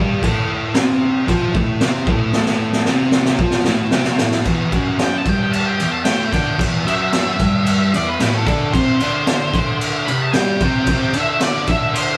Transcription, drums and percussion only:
0.23 kick loud
0.23 crash medium
0.75 snare loud
0.75 crash medium
1.28 kick loud
1.28 crash medium
1.55 kick loud
1.81 snare loud
1.81 crash medium
2.07 kick loud
2.33 snare medium
2.46 snare medium
2.73 snare medium
2.85 snare medium
3.11 snare medium
3.25 snare medium
3.39 kick loud
3.51 snare medium
3.64 snare loud
3.91 snare loud
4.04 snare medium
4.18 snare loud
4.31 snare loud
4.45 kick loud
4.45 crash medium
4.72 kick loud
4.72 crash medium
4.99 snare loud
4.99 crash medium
5.26 kick loud
5.26 crash medium
5.53 crash medium
5.80 crash medium
6.05 snare loud
6.05 crash medium
6.33 kick loud
6.33 crash medium
6.59 kick loud
6.59 crash medium
6.88 crash medium
7.13 snare loud
7.13 crash medium
7.40 kick loud
7.40 crash medium
7.66 crash medium
7.94 crash medium
8.20 snare loud
8.20 crash medium
8.47 kick loud
8.47 crash medium
8.74 kick loud
8.74 crash medium
9.00 crash medium
9.27 snare loud
9.27 crash medium
9.54 kick loud
9.54 crash medium
9.81 crash medium
10.08 crash medium
10.33 snare loud
10.33 crash medium
10.61 kick loud
10.61 crash medium
10.87 kick loud
10.87 crash medium
11.13 crash medium
11.40 snare loud
11.40 crash medium
11.67 kick loud
11.67 crash medium
11.96 crash medium

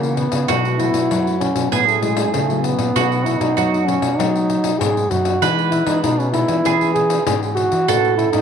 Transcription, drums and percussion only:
0.03 pandeiro soft
0.17 pandeiro medium
0.32 pandeiro medium
0.49 pandeiro medium
0.65 pandeiro soft
0.79 pandeiro soft
0.94 pandeiro medium
1.11 pandeiro medium
1.27 pandeiro soft
1.41 pandeiro medium
1.56 pandeiro medium
1.73 pandeiro medium
1.88 pandeiro soft
2.02 pandeiro soft
2.17 pandeiro medium
2.34 pandeiro medium
2.50 pandeiro soft
2.64 pandeiro medium
2.79 pandeiro medium
2.96 pandeiro medium
3.12 pandeiro soft
3.26 pandeiro soft
3.41 pandeiro medium
3.58 pandeiro medium
3.74 pandeiro soft
3.88 pandeiro medium
4.02 pandeiro medium
4.20 pandeiro medium
4.36 pandeiro soft
4.50 pandeiro medium
4.64 pandeiro medium
4.81 pandeiro medium
4.97 pandeiro soft
5.11 pandeiro medium
5.25 pandeiro medium
5.42 pandeiro medium
5.58 pandeiro soft
5.72 pandeiro medium
5.86 pandeiro medium
6.04 pandeiro medium
6.20 pandeiro soft
6.34 pandeiro medium
6.48 pandeiro medium
6.65 pandeiro medium
6.81 pandeiro soft
6.96 pandeiro medium
7.10 pandeiro medium
7.27 pandeiro medium
7.43 pandeiro soft
7.57 pandeiro medium
7.72 pandeiro medium
7.88 pandeiro medium
8.05 pandeiro soft
8.19 pandeiro medium
8.33 pandeiro medium

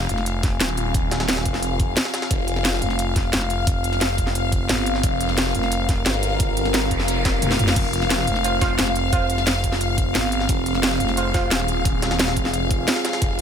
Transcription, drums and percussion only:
0.01 snare medium
0.09 closed hi-hat medium
0.18 snare soft
0.26 closed hi-hat medium
0.43 kick loud
0.43 snare soft
0.43 closed hi-hat medium
0.60 snare loud
0.60 closed hi-hat medium
0.69 snare soft
0.77 closed hi-hat medium
0.94 kick loud
0.94 closed hi-hat medium
1.11 snare loud
1.11 closed hi-hat medium
1.20 snare loud
1.20 snare soft
1.20 closed hi-hat medium
1.28 snare loud
1.28 closed hi-hat medium
1.37 snare loud
1.37 closed hi-hat medium
1.45 kick medium
1.45 closed hi-hat medium
1.54 snare soft
1.63 closed hi-hat medium
1.80 kick loud
1.80 closed hi-hat medium
1.97 snare loud
1.97 closed hi-hat medium
2.05 snare loud
2.05 closed hi-hat medium
2.14 snare loud
2.14 closed hi-hat medium
2.22 snare loud
2.22 closed hi-hat medium
2.31 kick loud
2.31 closed hi-hat medium
2.48 closed hi-hat medium
2.56 snare soft
2.65 snare loud
2.65 closed hi-hat medium
2.73 snare medium
2.82 closed hi-hat medium
2.90 snare soft
2.99 closed hi-hat medium
3.16 kick loud
3.16 snare soft
3.16 closed hi-hat medium
3.33 snare loud
3.33 closed hi-hat medium
3.42 snare soft
3.50 closed hi-hat medium
3.67 kick loud
3.67 closed hi-hat medium
3.84 closed hi-hat medium
3.93 snare soft
3.93 closed hi-hat soft
4.01 snare loud
4.01 closed hi-hat medium
4.18 kick medium
4.18 closed hi-hat medium
4.27 snare soft
4.35 closed hi-hat medium
4.52 kick loud
4.52 closed hi-hat medium
4.69 snare loud
4.69 closed hi-hat medium
4.78 closed hi-hat soft
4.86 closed hi-hat medium
4.95 snare medium
5.03 kick loud
5.03 closed hi-hat loud
5.03 closed hi-hat medium
5.20 closed hi-hat medium
5.29 snare soft
5.38 snare loud
5.38 closed hi-hat medium
5.38 closed hi-hat loud
5.46 snare medium
5.55 closed hi-hat medium
5.63 snare soft
5.72 closed hi-hat medium
5.72 closed hi-hat loud
5.89 kick loud
5.89 snare soft
5.89 closed hi-hat medium
6.06 snare loud
6.06 closed hi-hat medium
6.14 snare soft
6.23 closed hi-hat medium
6.40 kick loud
6.40 closed hi-hat medium
6.40 closed hi-hat loud
6.57 closed hi-hat medium
6.65 snare soft
6.65 closed hi-hat soft
6.74 snare loud
6.74 closed hi-hat medium
6.74 closed hi-hat loud
6.91 kick medium
6.91 closed hi-hat medium
7.00 snare soft
7.08 closed hi-hat medium
7.08 closed hi-hat loud
7.25 kick loud
7.25 snare loud
7.25 snare medium
7.25 closed hi-hat medium
7.42 closed hi-hat medium
7.42 closed hi-hat loud
7.42 mid tom medium
7.51 snare medium
7.59 closed hi-hat medium
7.59 mid tom medium
7.68 snare medium
7.68 closed hi-hat medium
7.76 kick loud
7.76 closed hi-hat medium
7.76 closed hi-hat loud
7.76 crash medium
7.93 closed hi-hat medium
8.02 snare soft
8.10 snare loud
8.10 closed hi-hat medium
8.10 closed hi-hat loud
8.19 snare medium
8.27 closed hi-hat medium
8.36 snare soft
8.44 closed hi-hat medium
8.44 closed hi-hat loud
8.61 kick loud
8.61 snare soft
8.61 closed hi-hat medium
8.78 snare loud
8.78 closed hi-hat medium
8.78 closed hi-hat loud
8.87 snare soft
8.95 closed hi-hat medium
9.13 kick loud
9.13 closed hi-hat medium
9.30 closed hi-hat medium
9.38 snare soft
9.38 closed hi-hat soft
9.47 snare loud
9.47 closed hi-hat medium
9.64 kick medium
9.64 closed hi-hat medium
9.72 snare soft
9.81 closed hi-hat medium
9.98 kick loud
9.98 closed hi-hat medium
10.15 snare loud
10.15 closed hi-hat medium
10.23 closed hi-hat soft
10.32 closed hi-hat medium
10.40 snare medium
10.49 kick loud
10.49 closed hi-hat medium
10.66 closed hi-hat medium
10.75 snare soft
10.83 snare loud
10.83 closed hi-hat medium
10.92 snare medium
11.00 closed hi-hat medium
11.09 snare soft
11.17 closed hi-hat medium
11.34 kick loud
11.34 snare soft
11.34 closed hi-hat medium
11.51 snare loud
11.51 closed hi-hat medium
11.60 snare soft
11.68 closed hi-hat medium
11.85 kick loud
11.85 closed hi-hat medium
12.02 snare loud
12.02 closed hi-hat medium
12.11 snare loud
12.11 snare soft
12.11 closed hi-hat medium
12.19 snare loud
12.19 closed hi-hat medium
12.28 snare loud
12.28 closed hi-hat medium
12.36 kick medium
12.36 closed hi-hat medium
12.45 snare soft
12.54 closed hi-hat medium
12.71 kick loud
12.71 closed hi-hat medium
12.88 snare loud
12.88 closed hi-hat medium
12.96 snare loud
12.96 closed hi-hat medium
13.05 snare loud
13.05 closed hi-hat medium
13.13 snare loud
13.13 closed hi-hat medium
13.22 kick loud
13.22 closed hi-hat medium

